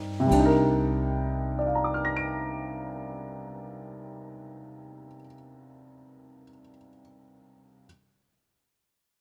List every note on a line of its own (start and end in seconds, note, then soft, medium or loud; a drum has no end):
0.00 0.26 G2 medium
0.00 0.25 G3 soft
0.00 0.29 C4 soft
0.00 0.30 D#4 soft
0.00 0.31 A#4 medium
0.20 5.07 C3 medium
0.27 5.14 G3 medium
0.31 5.14 C2 medium
0.31 5.20 D4 medium
0.31 kick soft
0.31 ride soft
0.39 5.26 D#4 medium
0.46 5.33 A#4 medium
1.59 6.42 D5 soft
1.67 6.50 F5 soft
1.75 6.59 A#5 soft
1.84 6.68 D6 soft
1.94 6.77 F6 soft
2.05 6.88 A#6 soft
2.17 7.00 D7 soft